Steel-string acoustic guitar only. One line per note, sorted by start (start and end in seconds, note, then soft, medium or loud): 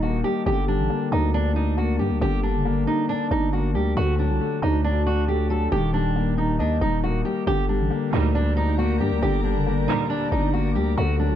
0.03 0.20 F#4 medium
0.24 0.42 G4 medium
0.46 0.64 G4 loud
0.68 1.09 D4 medium
1.12 1.29 D#4 medium
1.34 1.51 D4 loud
1.56 1.73 D#4 medium
1.78 1.95 F#4 medium
1.99 2.17 G4 medium
2.22 2.39 G4 loud
2.43 2.85 D4 medium
2.87 3.05 D#4 medium
3.09 3.26 D4 medium
3.31 3.48 D#4 medium
3.53 3.70 F#4 medium
3.75 3.92 G4 medium
3.97 4.14 F#4 loud
4.19 4.60 D4 medium
4.63 4.80 D#4 medium
4.84 5.02 D4 medium
5.07 5.24 F#4 medium
5.28 5.45 G4 medium
5.50 5.67 A4 medium
5.72 5.89 G4 loud
5.94 6.35 D4 medium
6.38 6.55 D#4 medium
6.60 6.77 D4 medium
6.81 6.99 D#4 medium
7.04 7.21 F#4 medium
7.25 7.42 G4 medium
7.47 7.64 G4 loud
7.69 8.10 D4 medium
8.13 8.30 D#4 medium
8.35 8.52 D4 loud
8.57 8.74 D#4 medium
8.79 8.96 F#4 medium
9.00 9.18 G4 medium
9.23 9.40 G4 loud
9.44 9.85 D4 medium
9.88 10.05 D#4 medium
10.10 10.27 D4 medium
10.32 10.49 D#4 medium
10.54 10.71 F#4 medium
10.76 10.93 G4 medium
10.97 11.15 F#4 loud
11.20 11.36 D4 medium